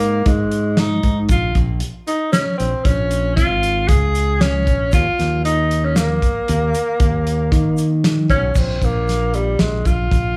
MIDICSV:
0, 0, Header, 1, 4, 480
1, 0, Start_track
1, 0, Key_signature, -5, "minor"
1, 0, Tempo, 518135
1, 1211, Time_signature, 7, 2, 24, 8
1, 9604, End_track
2, 0, Start_track
2, 0, Title_t, "Tenor saxophone"
2, 0, Program_c, 0, 66
2, 0, Note_on_c, 0, 58, 82
2, 252, Note_on_c, 0, 56, 74
2, 266, Note_off_c, 0, 58, 0
2, 736, Note_on_c, 0, 63, 82
2, 750, Note_off_c, 0, 56, 0
2, 1093, Note_off_c, 0, 63, 0
2, 1215, Note_on_c, 0, 65, 79
2, 1436, Note_off_c, 0, 65, 0
2, 1921, Note_on_c, 0, 63, 85
2, 2148, Note_off_c, 0, 63, 0
2, 2153, Note_on_c, 0, 61, 87
2, 2380, Note_off_c, 0, 61, 0
2, 2386, Note_on_c, 0, 60, 84
2, 2631, Note_on_c, 0, 61, 89
2, 2644, Note_off_c, 0, 60, 0
2, 3106, Note_off_c, 0, 61, 0
2, 3112, Note_on_c, 0, 65, 100
2, 3593, Note_on_c, 0, 68, 98
2, 3607, Note_off_c, 0, 65, 0
2, 4084, Note_on_c, 0, 61, 92
2, 4098, Note_off_c, 0, 68, 0
2, 4566, Note_off_c, 0, 61, 0
2, 4572, Note_on_c, 0, 65, 98
2, 5017, Note_off_c, 0, 65, 0
2, 5048, Note_on_c, 0, 63, 92
2, 5418, Note_on_c, 0, 61, 81
2, 5432, Note_off_c, 0, 63, 0
2, 5523, Note_on_c, 0, 58, 77
2, 5537, Note_off_c, 0, 61, 0
2, 7446, Note_off_c, 0, 58, 0
2, 7691, Note_on_c, 0, 61, 85
2, 7942, Note_on_c, 0, 60, 79
2, 7956, Note_off_c, 0, 61, 0
2, 8193, Note_on_c, 0, 58, 89
2, 8207, Note_off_c, 0, 60, 0
2, 8664, Note_on_c, 0, 55, 84
2, 8678, Note_off_c, 0, 58, 0
2, 8890, Note_on_c, 0, 56, 78
2, 8904, Note_off_c, 0, 55, 0
2, 9138, Note_on_c, 0, 65, 99
2, 9152, Note_off_c, 0, 56, 0
2, 9604, Note_off_c, 0, 65, 0
2, 9604, End_track
3, 0, Start_track
3, 0, Title_t, "Fingered electric bass"
3, 0, Program_c, 1, 33
3, 0, Note_on_c, 1, 44, 77
3, 219, Note_off_c, 1, 44, 0
3, 241, Note_on_c, 1, 44, 86
3, 929, Note_off_c, 1, 44, 0
3, 962, Note_on_c, 1, 44, 82
3, 1193, Note_off_c, 1, 44, 0
3, 1197, Note_on_c, 1, 34, 85
3, 1431, Note_off_c, 1, 34, 0
3, 1437, Note_on_c, 1, 34, 83
3, 1670, Note_off_c, 1, 34, 0
3, 2409, Note_on_c, 1, 34, 74
3, 2523, Note_off_c, 1, 34, 0
3, 2641, Note_on_c, 1, 34, 90
3, 3099, Note_off_c, 1, 34, 0
3, 3126, Note_on_c, 1, 32, 84
3, 3582, Note_off_c, 1, 32, 0
3, 3604, Note_on_c, 1, 37, 85
3, 4324, Note_off_c, 1, 37, 0
3, 4324, Note_on_c, 1, 34, 83
3, 4553, Note_off_c, 1, 34, 0
3, 4566, Note_on_c, 1, 39, 86
3, 4681, Note_off_c, 1, 39, 0
3, 4810, Note_on_c, 1, 39, 75
3, 5732, Note_off_c, 1, 39, 0
3, 6014, Note_on_c, 1, 39, 88
3, 6238, Note_off_c, 1, 39, 0
3, 6486, Note_on_c, 1, 39, 78
3, 6941, Note_off_c, 1, 39, 0
3, 6966, Note_on_c, 1, 51, 93
3, 7685, Note_on_c, 1, 35, 74
3, 7699, Note_off_c, 1, 51, 0
3, 7914, Note_off_c, 1, 35, 0
3, 7925, Note_on_c, 1, 34, 83
3, 8154, Note_off_c, 1, 34, 0
3, 8168, Note_on_c, 1, 34, 77
3, 8853, Note_off_c, 1, 34, 0
3, 8886, Note_on_c, 1, 34, 83
3, 9116, Note_off_c, 1, 34, 0
3, 9125, Note_on_c, 1, 34, 77
3, 9356, Note_off_c, 1, 34, 0
3, 9370, Note_on_c, 1, 34, 79
3, 9604, Note_off_c, 1, 34, 0
3, 9604, End_track
4, 0, Start_track
4, 0, Title_t, "Drums"
4, 0, Note_on_c, 9, 42, 59
4, 91, Note_off_c, 9, 42, 0
4, 238, Note_on_c, 9, 42, 77
4, 242, Note_on_c, 9, 36, 98
4, 331, Note_off_c, 9, 42, 0
4, 334, Note_off_c, 9, 36, 0
4, 477, Note_on_c, 9, 42, 50
4, 570, Note_off_c, 9, 42, 0
4, 714, Note_on_c, 9, 38, 112
4, 714, Note_on_c, 9, 42, 77
4, 807, Note_off_c, 9, 38, 0
4, 807, Note_off_c, 9, 42, 0
4, 957, Note_on_c, 9, 42, 49
4, 959, Note_on_c, 9, 36, 72
4, 1049, Note_off_c, 9, 42, 0
4, 1051, Note_off_c, 9, 36, 0
4, 1192, Note_on_c, 9, 42, 70
4, 1198, Note_on_c, 9, 36, 105
4, 1205, Note_on_c, 9, 82, 50
4, 1284, Note_off_c, 9, 42, 0
4, 1290, Note_off_c, 9, 36, 0
4, 1298, Note_off_c, 9, 82, 0
4, 1436, Note_on_c, 9, 42, 60
4, 1438, Note_on_c, 9, 36, 80
4, 1448, Note_on_c, 9, 82, 18
4, 1529, Note_off_c, 9, 42, 0
4, 1531, Note_off_c, 9, 36, 0
4, 1541, Note_off_c, 9, 82, 0
4, 1669, Note_on_c, 9, 42, 77
4, 1762, Note_off_c, 9, 42, 0
4, 1922, Note_on_c, 9, 42, 52
4, 1926, Note_on_c, 9, 82, 16
4, 2014, Note_off_c, 9, 42, 0
4, 2018, Note_off_c, 9, 82, 0
4, 2159, Note_on_c, 9, 38, 100
4, 2159, Note_on_c, 9, 42, 74
4, 2163, Note_on_c, 9, 82, 55
4, 2252, Note_off_c, 9, 38, 0
4, 2252, Note_off_c, 9, 42, 0
4, 2256, Note_off_c, 9, 82, 0
4, 2405, Note_on_c, 9, 82, 19
4, 2406, Note_on_c, 9, 42, 61
4, 2498, Note_off_c, 9, 82, 0
4, 2499, Note_off_c, 9, 42, 0
4, 2640, Note_on_c, 9, 36, 96
4, 2641, Note_on_c, 9, 42, 78
4, 2733, Note_off_c, 9, 36, 0
4, 2734, Note_off_c, 9, 42, 0
4, 2879, Note_on_c, 9, 42, 61
4, 2887, Note_on_c, 9, 82, 46
4, 2972, Note_off_c, 9, 42, 0
4, 2979, Note_off_c, 9, 82, 0
4, 3122, Note_on_c, 9, 36, 95
4, 3128, Note_on_c, 9, 42, 83
4, 3129, Note_on_c, 9, 82, 19
4, 3215, Note_off_c, 9, 36, 0
4, 3220, Note_off_c, 9, 42, 0
4, 3222, Note_off_c, 9, 82, 0
4, 3362, Note_on_c, 9, 42, 61
4, 3369, Note_on_c, 9, 82, 19
4, 3455, Note_off_c, 9, 42, 0
4, 3462, Note_off_c, 9, 82, 0
4, 3600, Note_on_c, 9, 42, 87
4, 3602, Note_on_c, 9, 36, 100
4, 3693, Note_off_c, 9, 42, 0
4, 3694, Note_off_c, 9, 36, 0
4, 3844, Note_on_c, 9, 42, 54
4, 3845, Note_on_c, 9, 82, 52
4, 3937, Note_off_c, 9, 42, 0
4, 3938, Note_off_c, 9, 82, 0
4, 4085, Note_on_c, 9, 38, 104
4, 4085, Note_on_c, 9, 42, 79
4, 4091, Note_on_c, 9, 82, 19
4, 4178, Note_off_c, 9, 38, 0
4, 4178, Note_off_c, 9, 42, 0
4, 4183, Note_off_c, 9, 82, 0
4, 4326, Note_on_c, 9, 36, 74
4, 4328, Note_on_c, 9, 42, 51
4, 4419, Note_off_c, 9, 36, 0
4, 4420, Note_off_c, 9, 42, 0
4, 4561, Note_on_c, 9, 82, 64
4, 4567, Note_on_c, 9, 36, 102
4, 4568, Note_on_c, 9, 42, 75
4, 4654, Note_off_c, 9, 82, 0
4, 4660, Note_off_c, 9, 36, 0
4, 4661, Note_off_c, 9, 42, 0
4, 4808, Note_on_c, 9, 82, 20
4, 4813, Note_on_c, 9, 38, 35
4, 4813, Note_on_c, 9, 42, 59
4, 4900, Note_off_c, 9, 82, 0
4, 4906, Note_off_c, 9, 38, 0
4, 4906, Note_off_c, 9, 42, 0
4, 5050, Note_on_c, 9, 42, 77
4, 5143, Note_off_c, 9, 42, 0
4, 5290, Note_on_c, 9, 42, 54
4, 5383, Note_off_c, 9, 42, 0
4, 5522, Note_on_c, 9, 38, 98
4, 5522, Note_on_c, 9, 42, 73
4, 5528, Note_on_c, 9, 82, 63
4, 5615, Note_off_c, 9, 38, 0
4, 5615, Note_off_c, 9, 42, 0
4, 5621, Note_off_c, 9, 82, 0
4, 5765, Note_on_c, 9, 36, 73
4, 5767, Note_on_c, 9, 42, 57
4, 5774, Note_on_c, 9, 82, 20
4, 5858, Note_off_c, 9, 36, 0
4, 5860, Note_off_c, 9, 42, 0
4, 5867, Note_off_c, 9, 82, 0
4, 6005, Note_on_c, 9, 42, 71
4, 6015, Note_on_c, 9, 82, 19
4, 6098, Note_off_c, 9, 42, 0
4, 6108, Note_off_c, 9, 82, 0
4, 6249, Note_on_c, 9, 42, 57
4, 6249, Note_on_c, 9, 82, 51
4, 6341, Note_off_c, 9, 42, 0
4, 6342, Note_off_c, 9, 82, 0
4, 6483, Note_on_c, 9, 42, 80
4, 6485, Note_on_c, 9, 36, 100
4, 6576, Note_off_c, 9, 42, 0
4, 6578, Note_off_c, 9, 36, 0
4, 6733, Note_on_c, 9, 42, 57
4, 6825, Note_off_c, 9, 42, 0
4, 6966, Note_on_c, 9, 36, 92
4, 6968, Note_on_c, 9, 42, 82
4, 7059, Note_off_c, 9, 36, 0
4, 7061, Note_off_c, 9, 42, 0
4, 7202, Note_on_c, 9, 82, 55
4, 7210, Note_on_c, 9, 42, 57
4, 7295, Note_off_c, 9, 82, 0
4, 7303, Note_off_c, 9, 42, 0
4, 7451, Note_on_c, 9, 38, 103
4, 7451, Note_on_c, 9, 42, 85
4, 7544, Note_off_c, 9, 38, 0
4, 7544, Note_off_c, 9, 42, 0
4, 7685, Note_on_c, 9, 36, 65
4, 7691, Note_on_c, 9, 42, 53
4, 7692, Note_on_c, 9, 82, 22
4, 7778, Note_off_c, 9, 36, 0
4, 7784, Note_off_c, 9, 42, 0
4, 7784, Note_off_c, 9, 82, 0
4, 7923, Note_on_c, 9, 82, 54
4, 7925, Note_on_c, 9, 36, 96
4, 7926, Note_on_c, 9, 49, 88
4, 8016, Note_off_c, 9, 82, 0
4, 8018, Note_off_c, 9, 36, 0
4, 8018, Note_off_c, 9, 49, 0
4, 8168, Note_on_c, 9, 36, 75
4, 8172, Note_on_c, 9, 42, 55
4, 8260, Note_off_c, 9, 36, 0
4, 8265, Note_off_c, 9, 42, 0
4, 8410, Note_on_c, 9, 82, 17
4, 8422, Note_on_c, 9, 38, 31
4, 8422, Note_on_c, 9, 42, 68
4, 8503, Note_off_c, 9, 82, 0
4, 8514, Note_off_c, 9, 38, 0
4, 8514, Note_off_c, 9, 42, 0
4, 8650, Note_on_c, 9, 42, 52
4, 8659, Note_on_c, 9, 82, 17
4, 8743, Note_off_c, 9, 42, 0
4, 8752, Note_off_c, 9, 82, 0
4, 8885, Note_on_c, 9, 38, 98
4, 8885, Note_on_c, 9, 42, 68
4, 8978, Note_off_c, 9, 38, 0
4, 8978, Note_off_c, 9, 42, 0
4, 9129, Note_on_c, 9, 36, 71
4, 9130, Note_on_c, 9, 42, 55
4, 9139, Note_on_c, 9, 82, 41
4, 9222, Note_off_c, 9, 36, 0
4, 9222, Note_off_c, 9, 42, 0
4, 9232, Note_off_c, 9, 82, 0
4, 9370, Note_on_c, 9, 36, 97
4, 9376, Note_on_c, 9, 42, 70
4, 9463, Note_off_c, 9, 36, 0
4, 9468, Note_off_c, 9, 42, 0
4, 9604, End_track
0, 0, End_of_file